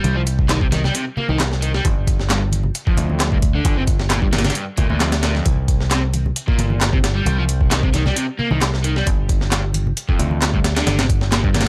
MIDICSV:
0, 0, Header, 1, 4, 480
1, 0, Start_track
1, 0, Key_signature, -3, "minor"
1, 0, Tempo, 451128
1, 45, Time_signature, 4, 2, 24, 8
1, 12428, End_track
2, 0, Start_track
2, 0, Title_t, "Overdriven electric guitar"
2, 0, Program_c, 0, 29
2, 0, Note_on_c, 0, 55, 75
2, 159, Note_off_c, 0, 55, 0
2, 171, Note_on_c, 0, 53, 99
2, 224, Note_off_c, 0, 53, 0
2, 524, Note_on_c, 0, 51, 83
2, 622, Note_off_c, 0, 51, 0
2, 652, Note_on_c, 0, 48, 77
2, 704, Note_off_c, 0, 48, 0
2, 768, Note_on_c, 0, 51, 75
2, 864, Note_off_c, 0, 51, 0
2, 896, Note_on_c, 0, 55, 75
2, 996, Note_off_c, 0, 55, 0
2, 1010, Note_on_c, 0, 48, 99
2, 1105, Note_off_c, 0, 48, 0
2, 1248, Note_on_c, 0, 58, 74
2, 1345, Note_off_c, 0, 58, 0
2, 1377, Note_on_c, 0, 51, 75
2, 1482, Note_off_c, 0, 51, 0
2, 1728, Note_on_c, 0, 51, 74
2, 1825, Note_off_c, 0, 51, 0
2, 1857, Note_on_c, 0, 55, 74
2, 1967, Note_off_c, 0, 55, 0
2, 2446, Note_on_c, 0, 43, 82
2, 2567, Note_off_c, 0, 43, 0
2, 3058, Note_on_c, 0, 41, 75
2, 3523, Note_off_c, 0, 41, 0
2, 3535, Note_on_c, 0, 43, 74
2, 3586, Note_off_c, 0, 43, 0
2, 3774, Note_on_c, 0, 50, 73
2, 4001, Note_off_c, 0, 50, 0
2, 4014, Note_on_c, 0, 48, 101
2, 4065, Note_off_c, 0, 48, 0
2, 4367, Note_on_c, 0, 46, 81
2, 4464, Note_off_c, 0, 46, 0
2, 4489, Note_on_c, 0, 43, 74
2, 4543, Note_off_c, 0, 43, 0
2, 4602, Note_on_c, 0, 46, 73
2, 4702, Note_off_c, 0, 46, 0
2, 4731, Note_on_c, 0, 50, 74
2, 4833, Note_off_c, 0, 50, 0
2, 4841, Note_on_c, 0, 43, 100
2, 4941, Note_off_c, 0, 43, 0
2, 5086, Note_on_c, 0, 46, 73
2, 5184, Note_off_c, 0, 46, 0
2, 5214, Note_on_c, 0, 46, 75
2, 5300, Note_off_c, 0, 46, 0
2, 5329, Note_on_c, 0, 41, 82
2, 5425, Note_off_c, 0, 41, 0
2, 5566, Note_on_c, 0, 46, 73
2, 5680, Note_off_c, 0, 46, 0
2, 5694, Note_on_c, 0, 41, 74
2, 5795, Note_off_c, 0, 41, 0
2, 6291, Note_on_c, 0, 48, 80
2, 6409, Note_off_c, 0, 48, 0
2, 6895, Note_on_c, 0, 46, 74
2, 7361, Note_off_c, 0, 46, 0
2, 7373, Note_on_c, 0, 48, 73
2, 7425, Note_off_c, 0, 48, 0
2, 7614, Note_on_c, 0, 55, 76
2, 7840, Note_off_c, 0, 55, 0
2, 7856, Note_on_c, 0, 53, 100
2, 7906, Note_off_c, 0, 53, 0
2, 8205, Note_on_c, 0, 51, 81
2, 8303, Note_off_c, 0, 51, 0
2, 8333, Note_on_c, 0, 48, 76
2, 8385, Note_off_c, 0, 48, 0
2, 8446, Note_on_c, 0, 51, 75
2, 8544, Note_off_c, 0, 51, 0
2, 8572, Note_on_c, 0, 55, 77
2, 8674, Note_off_c, 0, 55, 0
2, 8681, Note_on_c, 0, 48, 100
2, 8781, Note_off_c, 0, 48, 0
2, 8924, Note_on_c, 0, 58, 76
2, 9023, Note_off_c, 0, 58, 0
2, 9056, Note_on_c, 0, 51, 77
2, 9161, Note_off_c, 0, 51, 0
2, 9409, Note_on_c, 0, 51, 77
2, 9505, Note_off_c, 0, 51, 0
2, 9534, Note_on_c, 0, 55, 75
2, 9646, Note_off_c, 0, 55, 0
2, 10126, Note_on_c, 0, 43, 83
2, 10247, Note_off_c, 0, 43, 0
2, 10734, Note_on_c, 0, 41, 77
2, 11200, Note_off_c, 0, 41, 0
2, 11214, Note_on_c, 0, 43, 77
2, 11265, Note_off_c, 0, 43, 0
2, 11452, Note_on_c, 0, 50, 77
2, 11680, Note_off_c, 0, 50, 0
2, 11694, Note_on_c, 0, 48, 98
2, 11745, Note_off_c, 0, 48, 0
2, 12044, Note_on_c, 0, 46, 83
2, 12143, Note_off_c, 0, 46, 0
2, 12172, Note_on_c, 0, 43, 77
2, 12224, Note_off_c, 0, 43, 0
2, 12281, Note_on_c, 0, 46, 76
2, 12381, Note_off_c, 0, 46, 0
2, 12428, End_track
3, 0, Start_track
3, 0, Title_t, "Picked electric bass"
3, 0, Program_c, 1, 34
3, 41, Note_on_c, 1, 36, 100
3, 944, Note_off_c, 1, 36, 0
3, 1373, Note_on_c, 1, 36, 83
3, 1906, Note_off_c, 1, 36, 0
3, 1966, Note_on_c, 1, 31, 99
3, 2866, Note_off_c, 1, 31, 0
3, 3165, Note_on_c, 1, 38, 85
3, 3825, Note_off_c, 1, 38, 0
3, 3883, Note_on_c, 1, 31, 98
3, 4784, Note_off_c, 1, 31, 0
3, 5085, Note_on_c, 1, 38, 91
3, 5170, Note_off_c, 1, 38, 0
3, 5213, Note_on_c, 1, 38, 93
3, 5746, Note_off_c, 1, 38, 0
3, 5806, Note_on_c, 1, 36, 95
3, 6706, Note_off_c, 1, 36, 0
3, 7005, Note_on_c, 1, 31, 83
3, 7665, Note_off_c, 1, 31, 0
3, 7727, Note_on_c, 1, 36, 98
3, 8626, Note_off_c, 1, 36, 0
3, 9055, Note_on_c, 1, 36, 85
3, 9587, Note_off_c, 1, 36, 0
3, 9648, Note_on_c, 1, 31, 103
3, 10547, Note_off_c, 1, 31, 0
3, 10846, Note_on_c, 1, 38, 85
3, 11506, Note_off_c, 1, 38, 0
3, 11564, Note_on_c, 1, 31, 102
3, 12428, Note_off_c, 1, 31, 0
3, 12428, End_track
4, 0, Start_track
4, 0, Title_t, "Drums"
4, 44, Note_on_c, 9, 42, 61
4, 46, Note_on_c, 9, 63, 90
4, 151, Note_off_c, 9, 42, 0
4, 152, Note_off_c, 9, 63, 0
4, 285, Note_on_c, 9, 42, 77
4, 391, Note_off_c, 9, 42, 0
4, 412, Note_on_c, 9, 36, 86
4, 519, Note_off_c, 9, 36, 0
4, 524, Note_on_c, 9, 38, 111
4, 524, Note_on_c, 9, 42, 84
4, 525, Note_on_c, 9, 39, 110
4, 631, Note_off_c, 9, 38, 0
4, 631, Note_off_c, 9, 39, 0
4, 631, Note_off_c, 9, 42, 0
4, 652, Note_on_c, 9, 36, 96
4, 759, Note_off_c, 9, 36, 0
4, 764, Note_on_c, 9, 63, 69
4, 767, Note_on_c, 9, 38, 54
4, 767, Note_on_c, 9, 42, 67
4, 870, Note_off_c, 9, 63, 0
4, 874, Note_off_c, 9, 38, 0
4, 874, Note_off_c, 9, 42, 0
4, 896, Note_on_c, 9, 38, 38
4, 902, Note_on_c, 9, 64, 77
4, 1003, Note_off_c, 9, 38, 0
4, 1008, Note_on_c, 9, 42, 86
4, 1009, Note_off_c, 9, 64, 0
4, 1114, Note_off_c, 9, 42, 0
4, 1244, Note_on_c, 9, 64, 80
4, 1350, Note_off_c, 9, 64, 0
4, 1368, Note_on_c, 9, 63, 96
4, 1474, Note_off_c, 9, 63, 0
4, 1485, Note_on_c, 9, 39, 105
4, 1487, Note_on_c, 9, 38, 112
4, 1487, Note_on_c, 9, 42, 86
4, 1591, Note_off_c, 9, 39, 0
4, 1594, Note_off_c, 9, 38, 0
4, 1594, Note_off_c, 9, 42, 0
4, 1614, Note_on_c, 9, 38, 41
4, 1720, Note_off_c, 9, 38, 0
4, 1727, Note_on_c, 9, 42, 68
4, 1834, Note_off_c, 9, 42, 0
4, 1856, Note_on_c, 9, 38, 44
4, 1963, Note_off_c, 9, 38, 0
4, 1966, Note_on_c, 9, 36, 111
4, 1966, Note_on_c, 9, 42, 88
4, 1967, Note_on_c, 9, 63, 87
4, 2072, Note_off_c, 9, 36, 0
4, 2073, Note_off_c, 9, 42, 0
4, 2074, Note_off_c, 9, 63, 0
4, 2206, Note_on_c, 9, 36, 94
4, 2208, Note_on_c, 9, 42, 68
4, 2312, Note_off_c, 9, 36, 0
4, 2314, Note_off_c, 9, 42, 0
4, 2336, Note_on_c, 9, 38, 35
4, 2442, Note_off_c, 9, 38, 0
4, 2444, Note_on_c, 9, 39, 109
4, 2447, Note_on_c, 9, 38, 113
4, 2447, Note_on_c, 9, 42, 89
4, 2550, Note_off_c, 9, 39, 0
4, 2553, Note_off_c, 9, 38, 0
4, 2553, Note_off_c, 9, 42, 0
4, 2677, Note_on_c, 9, 63, 64
4, 2688, Note_on_c, 9, 42, 68
4, 2784, Note_off_c, 9, 63, 0
4, 2794, Note_off_c, 9, 42, 0
4, 2803, Note_on_c, 9, 64, 88
4, 2909, Note_off_c, 9, 64, 0
4, 2925, Note_on_c, 9, 42, 84
4, 3032, Note_off_c, 9, 42, 0
4, 3053, Note_on_c, 9, 36, 98
4, 3159, Note_off_c, 9, 36, 0
4, 3159, Note_on_c, 9, 64, 78
4, 3165, Note_on_c, 9, 42, 70
4, 3266, Note_off_c, 9, 64, 0
4, 3272, Note_off_c, 9, 42, 0
4, 3293, Note_on_c, 9, 63, 94
4, 3400, Note_off_c, 9, 63, 0
4, 3403, Note_on_c, 9, 39, 109
4, 3405, Note_on_c, 9, 38, 115
4, 3405, Note_on_c, 9, 42, 85
4, 3509, Note_off_c, 9, 39, 0
4, 3511, Note_off_c, 9, 38, 0
4, 3511, Note_off_c, 9, 42, 0
4, 3533, Note_on_c, 9, 36, 98
4, 3639, Note_off_c, 9, 36, 0
4, 3643, Note_on_c, 9, 42, 66
4, 3644, Note_on_c, 9, 36, 95
4, 3749, Note_off_c, 9, 42, 0
4, 3751, Note_off_c, 9, 36, 0
4, 3881, Note_on_c, 9, 42, 90
4, 3882, Note_on_c, 9, 63, 92
4, 3884, Note_on_c, 9, 36, 109
4, 3988, Note_off_c, 9, 42, 0
4, 3989, Note_off_c, 9, 63, 0
4, 3990, Note_off_c, 9, 36, 0
4, 4122, Note_on_c, 9, 42, 68
4, 4124, Note_on_c, 9, 36, 95
4, 4228, Note_off_c, 9, 42, 0
4, 4230, Note_off_c, 9, 36, 0
4, 4251, Note_on_c, 9, 38, 47
4, 4358, Note_off_c, 9, 38, 0
4, 4360, Note_on_c, 9, 38, 112
4, 4360, Note_on_c, 9, 42, 86
4, 4366, Note_on_c, 9, 39, 109
4, 4467, Note_off_c, 9, 38, 0
4, 4467, Note_off_c, 9, 42, 0
4, 4473, Note_off_c, 9, 39, 0
4, 4491, Note_on_c, 9, 36, 93
4, 4597, Note_off_c, 9, 36, 0
4, 4602, Note_on_c, 9, 63, 63
4, 4604, Note_on_c, 9, 38, 90
4, 4604, Note_on_c, 9, 42, 68
4, 4665, Note_off_c, 9, 38, 0
4, 4665, Note_off_c, 9, 42, 0
4, 4665, Note_on_c, 9, 38, 85
4, 4665, Note_on_c, 9, 42, 68
4, 4708, Note_off_c, 9, 63, 0
4, 4729, Note_off_c, 9, 38, 0
4, 4729, Note_off_c, 9, 42, 0
4, 4729, Note_on_c, 9, 38, 87
4, 4729, Note_on_c, 9, 42, 63
4, 4735, Note_on_c, 9, 64, 79
4, 4787, Note_off_c, 9, 38, 0
4, 4787, Note_off_c, 9, 42, 0
4, 4787, Note_on_c, 9, 38, 87
4, 4787, Note_on_c, 9, 42, 67
4, 4842, Note_off_c, 9, 64, 0
4, 4843, Note_off_c, 9, 42, 0
4, 4843, Note_on_c, 9, 42, 84
4, 4894, Note_off_c, 9, 38, 0
4, 4949, Note_off_c, 9, 42, 0
4, 5080, Note_on_c, 9, 42, 67
4, 5084, Note_on_c, 9, 36, 93
4, 5089, Note_on_c, 9, 64, 74
4, 5187, Note_off_c, 9, 42, 0
4, 5190, Note_off_c, 9, 36, 0
4, 5195, Note_off_c, 9, 64, 0
4, 5211, Note_on_c, 9, 63, 94
4, 5318, Note_off_c, 9, 63, 0
4, 5323, Note_on_c, 9, 38, 103
4, 5323, Note_on_c, 9, 42, 74
4, 5325, Note_on_c, 9, 39, 107
4, 5429, Note_off_c, 9, 38, 0
4, 5429, Note_off_c, 9, 42, 0
4, 5432, Note_off_c, 9, 39, 0
4, 5450, Note_on_c, 9, 38, 105
4, 5450, Note_on_c, 9, 42, 79
4, 5557, Note_off_c, 9, 38, 0
4, 5557, Note_off_c, 9, 42, 0
4, 5563, Note_on_c, 9, 38, 104
4, 5563, Note_on_c, 9, 42, 78
4, 5669, Note_off_c, 9, 38, 0
4, 5669, Note_off_c, 9, 42, 0
4, 5691, Note_on_c, 9, 38, 43
4, 5797, Note_off_c, 9, 38, 0
4, 5805, Note_on_c, 9, 36, 106
4, 5805, Note_on_c, 9, 42, 90
4, 5812, Note_on_c, 9, 63, 85
4, 5911, Note_off_c, 9, 36, 0
4, 5911, Note_off_c, 9, 42, 0
4, 5918, Note_off_c, 9, 63, 0
4, 6046, Note_on_c, 9, 36, 94
4, 6047, Note_on_c, 9, 42, 67
4, 6152, Note_off_c, 9, 36, 0
4, 6153, Note_off_c, 9, 42, 0
4, 6176, Note_on_c, 9, 38, 36
4, 6282, Note_off_c, 9, 38, 0
4, 6286, Note_on_c, 9, 39, 110
4, 6287, Note_on_c, 9, 38, 119
4, 6287, Note_on_c, 9, 42, 88
4, 6392, Note_off_c, 9, 39, 0
4, 6394, Note_off_c, 9, 38, 0
4, 6394, Note_off_c, 9, 42, 0
4, 6528, Note_on_c, 9, 42, 68
4, 6530, Note_on_c, 9, 63, 61
4, 6635, Note_off_c, 9, 42, 0
4, 6637, Note_off_c, 9, 63, 0
4, 6659, Note_on_c, 9, 64, 84
4, 6765, Note_off_c, 9, 64, 0
4, 6768, Note_on_c, 9, 42, 89
4, 6875, Note_off_c, 9, 42, 0
4, 6895, Note_on_c, 9, 36, 95
4, 7002, Note_off_c, 9, 36, 0
4, 7006, Note_on_c, 9, 64, 72
4, 7009, Note_on_c, 9, 42, 68
4, 7112, Note_off_c, 9, 64, 0
4, 7115, Note_off_c, 9, 42, 0
4, 7129, Note_on_c, 9, 63, 90
4, 7235, Note_off_c, 9, 63, 0
4, 7245, Note_on_c, 9, 39, 104
4, 7250, Note_on_c, 9, 38, 114
4, 7250, Note_on_c, 9, 42, 86
4, 7352, Note_off_c, 9, 39, 0
4, 7356, Note_off_c, 9, 38, 0
4, 7356, Note_off_c, 9, 42, 0
4, 7375, Note_on_c, 9, 36, 97
4, 7481, Note_off_c, 9, 36, 0
4, 7489, Note_on_c, 9, 38, 104
4, 7489, Note_on_c, 9, 42, 79
4, 7595, Note_off_c, 9, 38, 0
4, 7595, Note_off_c, 9, 42, 0
4, 7719, Note_on_c, 9, 63, 84
4, 7728, Note_on_c, 9, 42, 63
4, 7825, Note_off_c, 9, 63, 0
4, 7834, Note_off_c, 9, 42, 0
4, 7967, Note_on_c, 9, 42, 79
4, 8073, Note_off_c, 9, 42, 0
4, 8094, Note_on_c, 9, 36, 83
4, 8201, Note_off_c, 9, 36, 0
4, 8206, Note_on_c, 9, 38, 115
4, 8206, Note_on_c, 9, 39, 105
4, 8206, Note_on_c, 9, 42, 88
4, 8312, Note_off_c, 9, 39, 0
4, 8313, Note_off_c, 9, 38, 0
4, 8313, Note_off_c, 9, 42, 0
4, 8334, Note_on_c, 9, 36, 96
4, 8441, Note_off_c, 9, 36, 0
4, 8445, Note_on_c, 9, 38, 53
4, 8445, Note_on_c, 9, 42, 69
4, 8449, Note_on_c, 9, 63, 54
4, 8551, Note_off_c, 9, 38, 0
4, 8551, Note_off_c, 9, 42, 0
4, 8556, Note_off_c, 9, 63, 0
4, 8574, Note_on_c, 9, 38, 37
4, 8574, Note_on_c, 9, 64, 79
4, 8681, Note_off_c, 9, 38, 0
4, 8681, Note_off_c, 9, 64, 0
4, 8687, Note_on_c, 9, 42, 88
4, 8793, Note_off_c, 9, 42, 0
4, 8927, Note_on_c, 9, 64, 70
4, 9033, Note_off_c, 9, 64, 0
4, 9050, Note_on_c, 9, 63, 89
4, 9156, Note_off_c, 9, 63, 0
4, 9166, Note_on_c, 9, 39, 103
4, 9167, Note_on_c, 9, 38, 118
4, 9167, Note_on_c, 9, 42, 85
4, 9273, Note_off_c, 9, 38, 0
4, 9273, Note_off_c, 9, 39, 0
4, 9273, Note_off_c, 9, 42, 0
4, 9296, Note_on_c, 9, 38, 42
4, 9402, Note_off_c, 9, 38, 0
4, 9407, Note_on_c, 9, 42, 69
4, 9514, Note_off_c, 9, 42, 0
4, 9537, Note_on_c, 9, 38, 44
4, 9641, Note_on_c, 9, 63, 91
4, 9643, Note_off_c, 9, 38, 0
4, 9647, Note_on_c, 9, 36, 115
4, 9648, Note_on_c, 9, 42, 88
4, 9748, Note_off_c, 9, 63, 0
4, 9753, Note_off_c, 9, 36, 0
4, 9755, Note_off_c, 9, 42, 0
4, 9886, Note_on_c, 9, 36, 93
4, 9887, Note_on_c, 9, 42, 69
4, 9993, Note_off_c, 9, 36, 0
4, 9994, Note_off_c, 9, 42, 0
4, 10014, Note_on_c, 9, 38, 37
4, 10120, Note_off_c, 9, 38, 0
4, 10123, Note_on_c, 9, 39, 103
4, 10127, Note_on_c, 9, 38, 116
4, 10127, Note_on_c, 9, 42, 91
4, 10229, Note_off_c, 9, 39, 0
4, 10233, Note_off_c, 9, 38, 0
4, 10233, Note_off_c, 9, 42, 0
4, 10354, Note_on_c, 9, 63, 64
4, 10366, Note_on_c, 9, 42, 69
4, 10460, Note_off_c, 9, 63, 0
4, 10473, Note_off_c, 9, 42, 0
4, 10499, Note_on_c, 9, 64, 79
4, 10605, Note_off_c, 9, 64, 0
4, 10607, Note_on_c, 9, 42, 90
4, 10714, Note_off_c, 9, 42, 0
4, 10733, Note_on_c, 9, 36, 97
4, 10839, Note_off_c, 9, 36, 0
4, 10847, Note_on_c, 9, 42, 68
4, 10849, Note_on_c, 9, 64, 73
4, 10954, Note_off_c, 9, 42, 0
4, 10956, Note_off_c, 9, 64, 0
4, 10970, Note_on_c, 9, 63, 94
4, 11076, Note_off_c, 9, 63, 0
4, 11084, Note_on_c, 9, 39, 101
4, 11086, Note_on_c, 9, 38, 117
4, 11086, Note_on_c, 9, 42, 88
4, 11190, Note_off_c, 9, 39, 0
4, 11192, Note_off_c, 9, 38, 0
4, 11192, Note_off_c, 9, 42, 0
4, 11213, Note_on_c, 9, 36, 93
4, 11319, Note_off_c, 9, 36, 0
4, 11325, Note_on_c, 9, 38, 102
4, 11325, Note_on_c, 9, 42, 81
4, 11432, Note_off_c, 9, 38, 0
4, 11432, Note_off_c, 9, 42, 0
4, 11454, Note_on_c, 9, 38, 105
4, 11454, Note_on_c, 9, 42, 78
4, 11560, Note_off_c, 9, 38, 0
4, 11560, Note_off_c, 9, 42, 0
4, 11564, Note_on_c, 9, 38, 106
4, 11564, Note_on_c, 9, 42, 81
4, 11564, Note_on_c, 9, 63, 78
4, 11670, Note_off_c, 9, 38, 0
4, 11670, Note_off_c, 9, 42, 0
4, 11670, Note_off_c, 9, 63, 0
4, 11691, Note_on_c, 9, 38, 105
4, 11691, Note_on_c, 9, 42, 78
4, 11797, Note_off_c, 9, 38, 0
4, 11797, Note_off_c, 9, 42, 0
4, 11805, Note_on_c, 9, 36, 97
4, 11806, Note_on_c, 9, 42, 67
4, 11911, Note_off_c, 9, 36, 0
4, 11913, Note_off_c, 9, 42, 0
4, 11931, Note_on_c, 9, 38, 49
4, 12038, Note_off_c, 9, 38, 0
4, 12044, Note_on_c, 9, 38, 120
4, 12044, Note_on_c, 9, 39, 104
4, 12044, Note_on_c, 9, 42, 90
4, 12150, Note_off_c, 9, 39, 0
4, 12151, Note_off_c, 9, 38, 0
4, 12151, Note_off_c, 9, 42, 0
4, 12172, Note_on_c, 9, 36, 97
4, 12279, Note_off_c, 9, 36, 0
4, 12283, Note_on_c, 9, 38, 91
4, 12283, Note_on_c, 9, 42, 69
4, 12283, Note_on_c, 9, 63, 59
4, 12349, Note_off_c, 9, 38, 0
4, 12349, Note_off_c, 9, 42, 0
4, 12349, Note_on_c, 9, 38, 87
4, 12349, Note_on_c, 9, 42, 68
4, 12389, Note_off_c, 9, 63, 0
4, 12428, Note_off_c, 9, 38, 0
4, 12428, Note_off_c, 9, 42, 0
4, 12428, End_track
0, 0, End_of_file